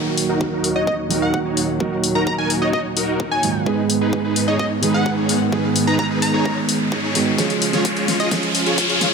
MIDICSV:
0, 0, Header, 1, 7, 480
1, 0, Start_track
1, 0, Key_signature, -6, "minor"
1, 0, Tempo, 465116
1, 1862, Time_signature, 4, 2, 24, 8
1, 9429, End_track
2, 0, Start_track
2, 0, Title_t, "Digital synth lead"
2, 0, Program_c, 0, 84
2, 781, Note_on_c, 0, 75, 84
2, 858, Note_off_c, 0, 75, 0
2, 901, Note_on_c, 0, 75, 73
2, 978, Note_off_c, 0, 75, 0
2, 1261, Note_on_c, 0, 78, 88
2, 1426, Note_off_c, 0, 78, 0
2, 2221, Note_on_c, 0, 82, 86
2, 2298, Note_off_c, 0, 82, 0
2, 2342, Note_on_c, 0, 82, 73
2, 2418, Note_off_c, 0, 82, 0
2, 2461, Note_on_c, 0, 80, 94
2, 2626, Note_off_c, 0, 80, 0
2, 2702, Note_on_c, 0, 75, 86
2, 2778, Note_off_c, 0, 75, 0
2, 2822, Note_on_c, 0, 75, 71
2, 2898, Note_off_c, 0, 75, 0
2, 3421, Note_on_c, 0, 80, 91
2, 3781, Note_off_c, 0, 80, 0
2, 4621, Note_on_c, 0, 75, 85
2, 4698, Note_off_c, 0, 75, 0
2, 4741, Note_on_c, 0, 75, 73
2, 4818, Note_off_c, 0, 75, 0
2, 5101, Note_on_c, 0, 78, 91
2, 5266, Note_off_c, 0, 78, 0
2, 6061, Note_on_c, 0, 82, 87
2, 6138, Note_off_c, 0, 82, 0
2, 6181, Note_on_c, 0, 82, 73
2, 6258, Note_off_c, 0, 82, 0
2, 6421, Note_on_c, 0, 82, 89
2, 6781, Note_off_c, 0, 82, 0
2, 8461, Note_on_c, 0, 75, 81
2, 8538, Note_off_c, 0, 75, 0
2, 9429, End_track
3, 0, Start_track
3, 0, Title_t, "Supersaw synth"
3, 0, Program_c, 1, 81
3, 301, Note_on_c, 1, 63, 85
3, 301, Note_on_c, 1, 66, 77
3, 301, Note_on_c, 1, 70, 94
3, 512, Note_off_c, 1, 63, 0
3, 512, Note_off_c, 1, 66, 0
3, 512, Note_off_c, 1, 70, 0
3, 541, Note_on_c, 1, 63, 95
3, 541, Note_on_c, 1, 66, 84
3, 541, Note_on_c, 1, 70, 102
3, 691, Note_off_c, 1, 63, 0
3, 691, Note_off_c, 1, 66, 0
3, 691, Note_off_c, 1, 70, 0
3, 781, Note_on_c, 1, 63, 94
3, 781, Note_on_c, 1, 66, 83
3, 781, Note_on_c, 1, 73, 102
3, 1021, Note_off_c, 1, 63, 0
3, 1021, Note_off_c, 1, 66, 0
3, 1021, Note_off_c, 1, 73, 0
3, 1140, Note_on_c, 1, 70, 88
3, 1141, Note_on_c, 1, 63, 79
3, 1141, Note_on_c, 1, 66, 72
3, 1472, Note_off_c, 1, 63, 0
3, 1472, Note_off_c, 1, 66, 0
3, 1472, Note_off_c, 1, 70, 0
3, 1501, Note_on_c, 1, 63, 78
3, 1501, Note_on_c, 1, 66, 68
3, 1501, Note_on_c, 1, 73, 86
3, 1651, Note_off_c, 1, 63, 0
3, 1651, Note_off_c, 1, 66, 0
3, 1651, Note_off_c, 1, 73, 0
3, 1861, Note_on_c, 1, 63, 82
3, 1861, Note_on_c, 1, 66, 74
3, 1861, Note_on_c, 1, 70, 88
3, 2011, Note_off_c, 1, 63, 0
3, 2011, Note_off_c, 1, 66, 0
3, 2011, Note_off_c, 1, 70, 0
3, 2221, Note_on_c, 1, 63, 84
3, 2221, Note_on_c, 1, 66, 78
3, 2221, Note_on_c, 1, 70, 96
3, 2432, Note_off_c, 1, 63, 0
3, 2432, Note_off_c, 1, 70, 0
3, 2433, Note_off_c, 1, 66, 0
3, 2461, Note_on_c, 1, 63, 94
3, 2461, Note_on_c, 1, 66, 85
3, 2461, Note_on_c, 1, 70, 105
3, 2611, Note_off_c, 1, 63, 0
3, 2611, Note_off_c, 1, 66, 0
3, 2611, Note_off_c, 1, 70, 0
3, 2701, Note_on_c, 1, 63, 93
3, 2701, Note_on_c, 1, 66, 85
3, 2701, Note_on_c, 1, 73, 104
3, 2941, Note_off_c, 1, 63, 0
3, 2941, Note_off_c, 1, 66, 0
3, 2941, Note_off_c, 1, 73, 0
3, 3061, Note_on_c, 1, 63, 79
3, 3061, Note_on_c, 1, 66, 71
3, 3061, Note_on_c, 1, 70, 88
3, 3392, Note_off_c, 1, 63, 0
3, 3392, Note_off_c, 1, 66, 0
3, 3392, Note_off_c, 1, 70, 0
3, 3421, Note_on_c, 1, 63, 75
3, 3421, Note_on_c, 1, 66, 69
3, 3421, Note_on_c, 1, 73, 87
3, 3571, Note_off_c, 1, 63, 0
3, 3571, Note_off_c, 1, 66, 0
3, 3571, Note_off_c, 1, 73, 0
3, 3781, Note_on_c, 1, 63, 81
3, 3781, Note_on_c, 1, 68, 75
3, 3781, Note_on_c, 1, 71, 90
3, 3931, Note_off_c, 1, 63, 0
3, 3931, Note_off_c, 1, 68, 0
3, 3931, Note_off_c, 1, 71, 0
3, 4141, Note_on_c, 1, 63, 83
3, 4141, Note_on_c, 1, 68, 80
3, 4141, Note_on_c, 1, 71, 93
3, 4352, Note_off_c, 1, 63, 0
3, 4352, Note_off_c, 1, 68, 0
3, 4352, Note_off_c, 1, 71, 0
3, 4381, Note_on_c, 1, 63, 93
3, 4381, Note_on_c, 1, 68, 87
3, 4381, Note_on_c, 1, 71, 106
3, 4531, Note_off_c, 1, 63, 0
3, 4531, Note_off_c, 1, 68, 0
3, 4531, Note_off_c, 1, 71, 0
3, 4621, Note_on_c, 1, 63, 92
3, 4621, Note_on_c, 1, 68, 86
3, 4621, Note_on_c, 1, 73, 104
3, 4861, Note_off_c, 1, 63, 0
3, 4861, Note_off_c, 1, 68, 0
3, 4861, Note_off_c, 1, 73, 0
3, 4981, Note_on_c, 1, 63, 78
3, 4981, Note_on_c, 1, 68, 75
3, 4981, Note_on_c, 1, 71, 85
3, 5312, Note_off_c, 1, 63, 0
3, 5312, Note_off_c, 1, 68, 0
3, 5312, Note_off_c, 1, 71, 0
3, 5341, Note_on_c, 1, 63, 79
3, 5341, Note_on_c, 1, 68, 72
3, 5341, Note_on_c, 1, 73, 86
3, 5491, Note_off_c, 1, 63, 0
3, 5491, Note_off_c, 1, 68, 0
3, 5491, Note_off_c, 1, 73, 0
3, 5701, Note_on_c, 1, 63, 82
3, 5701, Note_on_c, 1, 68, 75
3, 5701, Note_on_c, 1, 71, 91
3, 5851, Note_off_c, 1, 63, 0
3, 5851, Note_off_c, 1, 68, 0
3, 5851, Note_off_c, 1, 71, 0
3, 6061, Note_on_c, 1, 63, 86
3, 6061, Note_on_c, 1, 68, 77
3, 6061, Note_on_c, 1, 71, 94
3, 6272, Note_off_c, 1, 63, 0
3, 6272, Note_off_c, 1, 68, 0
3, 6272, Note_off_c, 1, 71, 0
3, 6300, Note_on_c, 1, 63, 95
3, 6300, Note_on_c, 1, 71, 102
3, 6301, Note_on_c, 1, 68, 87
3, 6451, Note_off_c, 1, 63, 0
3, 6451, Note_off_c, 1, 68, 0
3, 6451, Note_off_c, 1, 71, 0
3, 6540, Note_on_c, 1, 63, 95
3, 6541, Note_on_c, 1, 68, 86
3, 6541, Note_on_c, 1, 73, 104
3, 6781, Note_off_c, 1, 63, 0
3, 6781, Note_off_c, 1, 68, 0
3, 6781, Note_off_c, 1, 73, 0
3, 7141, Note_on_c, 1, 63, 82
3, 7141, Note_on_c, 1, 68, 76
3, 7141, Note_on_c, 1, 73, 90
3, 7232, Note_off_c, 1, 63, 0
3, 7232, Note_off_c, 1, 68, 0
3, 7232, Note_off_c, 1, 73, 0
3, 7260, Note_on_c, 1, 73, 99
3, 7261, Note_on_c, 1, 63, 92
3, 7261, Note_on_c, 1, 68, 84
3, 7411, Note_off_c, 1, 63, 0
3, 7411, Note_off_c, 1, 68, 0
3, 7411, Note_off_c, 1, 73, 0
3, 7620, Note_on_c, 1, 65, 73
3, 7620, Note_on_c, 1, 68, 67
3, 7620, Note_on_c, 1, 73, 83
3, 7771, Note_off_c, 1, 65, 0
3, 7771, Note_off_c, 1, 68, 0
3, 7771, Note_off_c, 1, 73, 0
3, 7981, Note_on_c, 1, 65, 78
3, 7981, Note_on_c, 1, 68, 73
3, 7981, Note_on_c, 1, 73, 87
3, 8192, Note_off_c, 1, 68, 0
3, 8193, Note_off_c, 1, 65, 0
3, 8193, Note_off_c, 1, 73, 0
3, 8221, Note_on_c, 1, 65, 89
3, 8221, Note_on_c, 1, 68, 79
3, 8221, Note_on_c, 1, 73, 97
3, 8371, Note_off_c, 1, 65, 0
3, 8371, Note_off_c, 1, 68, 0
3, 8371, Note_off_c, 1, 73, 0
3, 8461, Note_on_c, 1, 65, 87
3, 8461, Note_on_c, 1, 68, 80
3, 8461, Note_on_c, 1, 75, 97
3, 8562, Note_off_c, 1, 65, 0
3, 8562, Note_off_c, 1, 68, 0
3, 8562, Note_off_c, 1, 75, 0
3, 8581, Note_on_c, 1, 65, 77
3, 8581, Note_on_c, 1, 68, 68
3, 8581, Note_on_c, 1, 73, 84
3, 8731, Note_off_c, 1, 65, 0
3, 8731, Note_off_c, 1, 68, 0
3, 8731, Note_off_c, 1, 73, 0
3, 8941, Note_on_c, 1, 65, 82
3, 8941, Note_on_c, 1, 68, 74
3, 8941, Note_on_c, 1, 73, 90
3, 9152, Note_off_c, 1, 65, 0
3, 9152, Note_off_c, 1, 68, 0
3, 9152, Note_off_c, 1, 73, 0
3, 9181, Note_on_c, 1, 65, 92
3, 9181, Note_on_c, 1, 68, 84
3, 9181, Note_on_c, 1, 73, 99
3, 9331, Note_off_c, 1, 65, 0
3, 9331, Note_off_c, 1, 68, 0
3, 9331, Note_off_c, 1, 73, 0
3, 9429, End_track
4, 0, Start_track
4, 0, Title_t, "Grand piano"
4, 0, Program_c, 2, 0
4, 0, Note_on_c, 2, 51, 78
4, 0, Note_on_c, 2, 54, 71
4, 0, Note_on_c, 2, 58, 72
4, 0, Note_on_c, 2, 66, 86
4, 121, Control_c, 2, 64, 127
4, 1106, Note_off_c, 2, 51, 0
4, 1110, Note_off_c, 2, 54, 0
4, 1114, Note_off_c, 2, 58, 0
4, 1118, Note_off_c, 2, 66, 0
4, 1128, Note_on_c, 2, 51, 90
4, 1136, Note_on_c, 2, 54, 82
4, 1144, Note_on_c, 2, 58, 81
4, 1153, Note_on_c, 2, 66, 98
4, 1826, Note_off_c, 2, 51, 0
4, 1830, Note_off_c, 2, 54, 0
4, 1834, Note_off_c, 2, 58, 0
4, 1838, Note_off_c, 2, 66, 0
4, 1854, Note_on_c, 2, 51, 81
4, 1858, Note_on_c, 2, 54, 76
4, 1863, Note_on_c, 2, 58, 75
4, 1867, Note_on_c, 2, 66, 88
4, 1994, Note_off_c, 2, 51, 0
4, 1996, Note_off_c, 2, 54, 0
4, 1998, Note_off_c, 2, 58, 0
4, 2000, Note_off_c, 2, 66, 0
4, 3535, Note_on_c, 2, 44, 69
4, 3538, Note_on_c, 2, 51, 65
4, 3541, Note_on_c, 2, 54, 63
4, 3545, Note_on_c, 2, 58, 64
4, 3548, Note_on_c, 2, 65, 76
4, 3749, Note_off_c, 2, 44, 0
4, 3751, Note_off_c, 2, 51, 0
4, 3753, Note_off_c, 2, 54, 0
4, 3754, Note_off_c, 2, 58, 0
4, 3756, Note_off_c, 2, 65, 0
4, 3769, Note_on_c, 2, 44, 80
4, 3775, Note_on_c, 2, 51, 73
4, 3781, Note_on_c, 2, 56, 74
4, 3787, Note_on_c, 2, 59, 74
4, 3793, Control_c, 2, 64, 0
4, 3793, Note_on_c, 2, 68, 88
4, 3951, Control_c, 2, 64, 127
4, 4946, Note_off_c, 2, 44, 0
4, 4949, Note_off_c, 2, 51, 0
4, 4952, Note_off_c, 2, 56, 0
4, 4956, Note_off_c, 2, 59, 0
4, 4958, Note_off_c, 2, 68, 0
4, 4968, Note_on_c, 2, 44, 92
4, 4975, Note_on_c, 2, 51, 83
4, 4981, Note_on_c, 2, 56, 84
4, 4987, Note_on_c, 2, 59, 82
4, 4993, Note_on_c, 2, 68, 100
4, 5666, Note_off_c, 2, 44, 0
4, 5669, Note_off_c, 2, 51, 0
4, 5672, Note_off_c, 2, 56, 0
4, 5675, Note_off_c, 2, 59, 0
4, 5679, Note_off_c, 2, 68, 0
4, 5695, Note_on_c, 2, 44, 81
4, 5698, Note_on_c, 2, 51, 77
4, 5701, Note_on_c, 2, 56, 74
4, 5704, Note_on_c, 2, 59, 76
4, 5707, Note_on_c, 2, 68, 90
4, 5834, Note_off_c, 2, 44, 0
4, 5835, Note_off_c, 2, 51, 0
4, 5837, Note_off_c, 2, 56, 0
4, 5839, Note_off_c, 2, 59, 0
4, 5840, Note_off_c, 2, 68, 0
4, 7375, Note_on_c, 2, 51, 72
4, 7379, Note_on_c, 2, 56, 65
4, 7383, Note_on_c, 2, 59, 66
4, 7387, Note_on_c, 2, 66, 77
4, 7589, Note_off_c, 2, 51, 0
4, 7591, Note_off_c, 2, 56, 0
4, 7593, Note_off_c, 2, 59, 0
4, 7596, Note_off_c, 2, 66, 0
4, 7609, Note_on_c, 2, 53, 74
4, 7617, Note_on_c, 2, 56, 69
4, 7625, Note_on_c, 2, 61, 67
4, 7633, Control_c, 2, 64, 0
4, 7634, Note_on_c, 2, 68, 84
4, 7808, Control_c, 2, 64, 127
4, 8553, Note_off_c, 2, 53, 0
4, 8560, Note_off_c, 2, 56, 0
4, 8564, Note_off_c, 2, 61, 0
4, 8568, Note_off_c, 2, 68, 0
4, 8569, Note_on_c, 2, 53, 77
4, 8577, Note_on_c, 2, 56, 70
4, 8585, Note_on_c, 2, 61, 71
4, 8593, Note_on_c, 2, 68, 83
4, 9429, Note_off_c, 2, 53, 0
4, 9429, Note_off_c, 2, 56, 0
4, 9429, Note_off_c, 2, 61, 0
4, 9429, Note_off_c, 2, 68, 0
4, 9429, End_track
5, 0, Start_track
5, 0, Title_t, "String section"
5, 0, Program_c, 3, 48
5, 0, Note_on_c, 3, 39, 77
5, 0, Note_on_c, 3, 46, 71
5, 0, Note_on_c, 3, 54, 85
5, 3743, Note_off_c, 3, 39, 0
5, 3743, Note_off_c, 3, 46, 0
5, 3743, Note_off_c, 3, 54, 0
5, 3781, Note_on_c, 3, 44, 77
5, 3781, Note_on_c, 3, 51, 72
5, 3781, Note_on_c, 3, 59, 88
5, 7583, Note_off_c, 3, 44, 0
5, 7583, Note_off_c, 3, 51, 0
5, 7583, Note_off_c, 3, 59, 0
5, 7620, Note_on_c, 3, 49, 78
5, 7620, Note_on_c, 3, 65, 85
5, 7621, Note_on_c, 3, 56, 71
5, 9429, Note_off_c, 3, 49, 0
5, 9429, Note_off_c, 3, 56, 0
5, 9429, Note_off_c, 3, 65, 0
5, 9429, End_track
6, 0, Start_track
6, 0, Title_t, "Riser"
6, 0, Program_c, 4, 103
6, 0, Note_on_c, 4, 60, 75
6, 9429, Note_off_c, 4, 60, 0
6, 9429, End_track
7, 0, Start_track
7, 0, Title_t, "Drums"
7, 181, Note_on_c, 9, 46, 101
7, 284, Note_off_c, 9, 46, 0
7, 421, Note_on_c, 9, 36, 112
7, 524, Note_off_c, 9, 36, 0
7, 661, Note_on_c, 9, 46, 89
7, 764, Note_off_c, 9, 46, 0
7, 901, Note_on_c, 9, 36, 114
7, 1004, Note_off_c, 9, 36, 0
7, 1141, Note_on_c, 9, 46, 98
7, 1244, Note_off_c, 9, 46, 0
7, 1381, Note_on_c, 9, 36, 116
7, 1484, Note_off_c, 9, 36, 0
7, 1621, Note_on_c, 9, 46, 87
7, 1724, Note_off_c, 9, 46, 0
7, 1861, Note_on_c, 9, 36, 115
7, 1964, Note_off_c, 9, 36, 0
7, 2101, Note_on_c, 9, 46, 108
7, 2204, Note_off_c, 9, 46, 0
7, 2341, Note_on_c, 9, 36, 118
7, 2444, Note_off_c, 9, 36, 0
7, 2581, Note_on_c, 9, 46, 91
7, 2684, Note_off_c, 9, 46, 0
7, 2821, Note_on_c, 9, 36, 113
7, 2924, Note_off_c, 9, 36, 0
7, 3061, Note_on_c, 9, 46, 102
7, 3164, Note_off_c, 9, 46, 0
7, 3301, Note_on_c, 9, 36, 120
7, 3404, Note_off_c, 9, 36, 0
7, 3541, Note_on_c, 9, 46, 92
7, 3644, Note_off_c, 9, 46, 0
7, 3781, Note_on_c, 9, 36, 121
7, 3884, Note_off_c, 9, 36, 0
7, 4021, Note_on_c, 9, 46, 111
7, 4124, Note_off_c, 9, 46, 0
7, 4261, Note_on_c, 9, 36, 121
7, 4364, Note_off_c, 9, 36, 0
7, 4501, Note_on_c, 9, 46, 93
7, 4604, Note_off_c, 9, 46, 0
7, 4741, Note_on_c, 9, 36, 118
7, 4844, Note_off_c, 9, 36, 0
7, 4981, Note_on_c, 9, 46, 108
7, 5084, Note_off_c, 9, 46, 0
7, 5221, Note_on_c, 9, 36, 123
7, 5324, Note_off_c, 9, 36, 0
7, 5461, Note_on_c, 9, 46, 95
7, 5564, Note_off_c, 9, 46, 0
7, 5701, Note_on_c, 9, 36, 119
7, 5804, Note_off_c, 9, 36, 0
7, 5941, Note_on_c, 9, 46, 108
7, 6044, Note_off_c, 9, 46, 0
7, 6181, Note_on_c, 9, 36, 119
7, 6284, Note_off_c, 9, 36, 0
7, 6421, Note_on_c, 9, 46, 91
7, 6524, Note_off_c, 9, 46, 0
7, 6661, Note_on_c, 9, 36, 119
7, 6764, Note_off_c, 9, 36, 0
7, 6901, Note_on_c, 9, 46, 107
7, 7004, Note_off_c, 9, 46, 0
7, 7141, Note_on_c, 9, 36, 122
7, 7244, Note_off_c, 9, 36, 0
7, 7381, Note_on_c, 9, 46, 94
7, 7484, Note_off_c, 9, 46, 0
7, 7621, Note_on_c, 9, 36, 112
7, 7621, Note_on_c, 9, 38, 46
7, 7621, Note_on_c, 9, 42, 85
7, 7724, Note_off_c, 9, 36, 0
7, 7724, Note_off_c, 9, 38, 0
7, 7724, Note_off_c, 9, 42, 0
7, 7741, Note_on_c, 9, 42, 38
7, 7844, Note_off_c, 9, 42, 0
7, 7861, Note_on_c, 9, 46, 107
7, 7964, Note_off_c, 9, 46, 0
7, 7981, Note_on_c, 9, 38, 44
7, 7981, Note_on_c, 9, 42, 37
7, 8084, Note_off_c, 9, 38, 0
7, 8084, Note_off_c, 9, 42, 0
7, 8100, Note_on_c, 9, 42, 86
7, 8101, Note_on_c, 9, 36, 116
7, 8204, Note_off_c, 9, 36, 0
7, 8204, Note_off_c, 9, 42, 0
7, 8221, Note_on_c, 9, 42, 37
7, 8324, Note_off_c, 9, 42, 0
7, 8341, Note_on_c, 9, 38, 51
7, 8341, Note_on_c, 9, 46, 89
7, 8444, Note_off_c, 9, 38, 0
7, 8444, Note_off_c, 9, 46, 0
7, 8461, Note_on_c, 9, 42, 36
7, 8564, Note_off_c, 9, 42, 0
7, 8580, Note_on_c, 9, 38, 52
7, 8580, Note_on_c, 9, 42, 87
7, 8581, Note_on_c, 9, 36, 112
7, 8683, Note_off_c, 9, 38, 0
7, 8683, Note_off_c, 9, 42, 0
7, 8684, Note_off_c, 9, 36, 0
7, 8700, Note_on_c, 9, 42, 37
7, 8803, Note_off_c, 9, 42, 0
7, 8820, Note_on_c, 9, 46, 101
7, 8924, Note_off_c, 9, 46, 0
7, 8941, Note_on_c, 9, 42, 37
7, 9044, Note_off_c, 9, 42, 0
7, 9060, Note_on_c, 9, 42, 85
7, 9061, Note_on_c, 9, 36, 118
7, 9163, Note_off_c, 9, 42, 0
7, 9164, Note_off_c, 9, 36, 0
7, 9181, Note_on_c, 9, 42, 38
7, 9284, Note_off_c, 9, 42, 0
7, 9300, Note_on_c, 9, 38, 56
7, 9300, Note_on_c, 9, 46, 91
7, 9403, Note_off_c, 9, 38, 0
7, 9403, Note_off_c, 9, 46, 0
7, 9429, End_track
0, 0, End_of_file